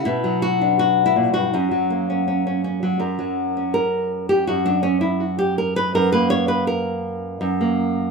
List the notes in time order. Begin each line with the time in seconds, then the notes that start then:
0.05 B2 E4
0.24 F#3
0.42 F#4
0.61 D4
0.79 F#4
1.06 E4
1.16 A#2
1.34 G2 F#4
1.54 F#2 C#4
1.71 F#3
1.90 A#3
2.10 C#4
2.28 C#4
2.47 C#4
2.64 C#4
2.83 F#3
3.00 F#2 A#4
3.19 F#3
3.57 C#4
3.74 A#4
4.29 G4
4.47 F#2 F#4
4.66 F#3 D4
4.83 C#4
5.01 E4
5.20 F#4
5.39 G4
5.58 A#4
5.76 B4
5.95 F#2 A#4
6.12 A#3 B4
6.30 C#5
6.48 B4
6.67 A#4
7.41 F#2
7.61 A#3